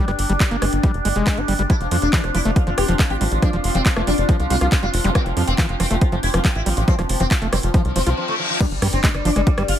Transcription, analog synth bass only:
0.08 G1
0.19 G1
0.30 G1
0.51 G1
0.62 G1
0.73 G1
0.94 F1
1.05 G1
1.16 F1
1.37 G1
1.48 G1
1.59 G1
1.81 F1
1.91 F2
2.02 F1
2.24 F1
2.35 F1
2.45 F1
2.67 G1
2.78 F1
2.89 F1
3.10 A1
3.21 A1
3.32 A1
3.53 F1
3.64 F1
3.75 F1
3.96 F1
4.07 F1
4.18 F1
4.40 C2
4.50 C2
4.61 C2
4.83 F1
4.94 F1
5.04 F1
5.26 F1
5.37 F2
5.47 F1
5.69 F1
5.80 F1
5.91 F1
6.12 G1
6.23 F1
6.34 F1
6.55 A1
6.66 A1
6.77 A1
6.99 F1
7.09 F1
7.20 F1
7.42 F1
7.53 F1
7.63 F1
7.85 C2
7.96 F1
8.07 C2
8.71 G1
8.82 G2
8.93 G1
9.14 G1
9.25 G1
9.36 G1
9.58 G#1
9.68 G1

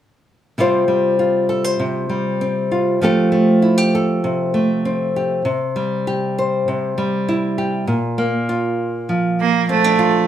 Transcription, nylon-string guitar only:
0.58 C3 G3 C4 F4 C5
0.88 G3
1.19 F4
1.49 A4
1.64 C5
1.79 C3
2.09 G3
2.41 C4
2.71 F4
3.01 F3 A3 C4 G4 A4
3.32 A3
3.62 E4
3.78 G4
3.95 A4
4.24 C3
4.54 A3
4.85 C4
5.16 G4
5.45 C3
5.76 G3
6.07 G4
6.38 C5
6.68 C3
6.98 G3
7.28 E4
7.58 G4
7.87 A#2
8.18 A#3
8.49 F4
9.09 F3
9.69 C4
9.84 D4
9.99 F4

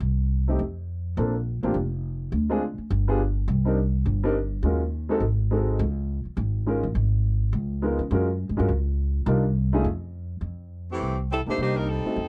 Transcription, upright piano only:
0.48 A3 C4 D#4 G4
1.17 A#3 C4 D4 F4 A4
1.63 A#3 C4 D4 F4 G4
2.50 G#3 C4 D4 F4 G#4
3.08 G3 B3 D4 F4 G#4
3.65 G3 C4 D4 D#4 A#4
4.23 G3 C4 D4 D#4 A#4
4.64 G#3 C#4 F4 F#4 A#4
5.09 G#3 C4 D#4 F#4 A4
5.51 G#3 C4 D#4 F#4 A4
6.66 G#3 C#4 D#4 F4 A#4
7.82 G#3 B3 D#4 F4 A#4
8.11 G#3 C#4 F4 F#4 A#4
8.57 G#3 C#4 F4 F#4 A#4
9.26 G3 D4 D#4 F4 A#4
9.73 A3 C#4 D#4 F4 G#4
11.47 A#3 D4 D#4 G4
12.05 A3 C4 D#4 F#4

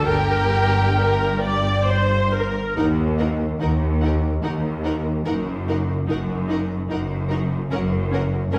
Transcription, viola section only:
0.06 A#4
0.97 A#4
1.43 D5
1.88 C5
2.33 A#4
2.77 D#4
3.20 D#4
3.61 D#4
4.02 D#4
4.43 D#4
4.85 D#4
5.27 D#4
5.68 D#4
6.07 D#4
6.48 D#4
6.90 D#4
7.31 D#4
7.71 C#4
8.12 C#4
8.53 C#4

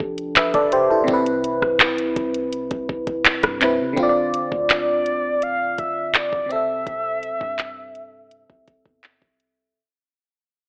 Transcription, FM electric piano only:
Already playing: F3 D4 G4 A4
0.37 B4 E5
0.54 A4 D5
0.73 G4 C5
0.91 E4 A4
1.04 C3 C4
1.10 E4 B4
3.60 C3 C4 E4
3.65 B4
3.93 D3 C4
4.00 F4 D5
4.09 D5
6.46 C3 C4
6.53 A4 E5

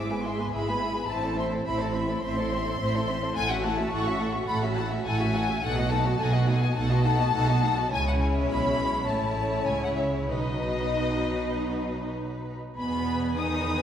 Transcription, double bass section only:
Already playing: G#1
0.53 G#1
1.08 A1
1.65 A1
2.22 A1
2.79 A1
3.35 A1
3.92 A1
4.48 A1
5.06 A1
5.63 B1
6.20 B1
6.78 B1
7.35 B1
7.92 C#2
8.50 B1
9.07 A1
9.67 C#2
10.29 B1
12.79 E2

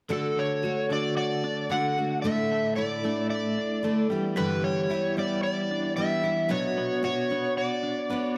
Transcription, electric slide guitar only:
0.13 A4
0.39 C#5
0.93 D5
1.17 D5
1.71 F#5
2.22 E5
2.76 D5
3.30 D5
4.38 B4
4.64 C#5
5.19 D5
5.43 D5
5.96 E5
6.51 C#5
7.05 C#5
7.58 D5

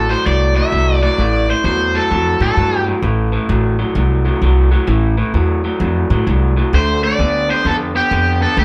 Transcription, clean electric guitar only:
0.09 A2 F#3
0.26 A2 F#3
0.56 A2 F#3
0.72 A2 F#3
1.03 A2 F#3
1.19 A2 E3
1.49 A2 E3
1.65 A2 F#3
1.94 A2 F#3
2.10 A2 F#3
2.40 A2 F#3
2.57 A2 F#3
2.87 A2 F#3
3.03 A2 E3
3.32 A2 E3
3.49 A2 F#3
3.79 A2 F#3
3.95 A2 F#3
4.25 A2 F#3
4.42 A2 F#3
4.71 A2 F#3
4.87 A2 E3
5.18 A2 E3
5.34 A2 F#3
5.64 A2 F#3
5.81 A2 F#3
6.10 A2 F#3
6.26 A2 F#3
6.57 A2 F#3
6.73 D3 A3
7.03 D3 A3
7.19 D3 B3
7.49 D3 B3
7.65 D3 B3
7.95 D3 B3
8.11 D3 B3
8.41 D3 B3
8.57 D3 A3

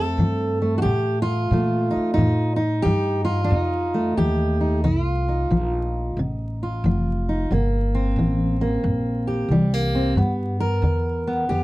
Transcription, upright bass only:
Already playing: F2
0.18 G2
0.85 A2
1.51 A#2
1.96 muted upright bass stroke
2.17 A2
2.85 G2
3.51 F2
4.17 D#2
4.84 C2
5.50 A#1
6.17 A1
6.84 F1
7.51 G1
8.16 A1
8.83 A#1
9.48 C2
10.15 G2
10.82 E2
11.49 F2

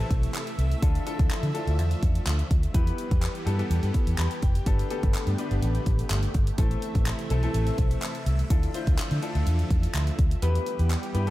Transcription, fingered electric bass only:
0.11 B1
0.58 C2
0.82 D2
1.19 D2
1.43 D3
1.67 D2
1.79 E2
2.03 E2
2.26 D2
2.51 D2
2.74 E2
3.11 E2
3.46 G2
3.70 E2
3.83 G2
4.07 E2
4.18 E2
4.43 F1
4.66 G1
5.03 G1
5.27 G2
5.51 G1
5.62 A1
5.86 A1
6.10 G1
6.35 G1
6.58 A1
6.95 A1
7.30 B1
7.54 A1
7.78 B1
8.26 C2
8.50 D2
8.87 D2
8.98 muted fingered electric bass stroke
9.11 D3
9.35 D2
9.46 E2
9.70 E2
9.94 D2
10.19 D2
10.42 E2
10.79 E2
11.15 G2

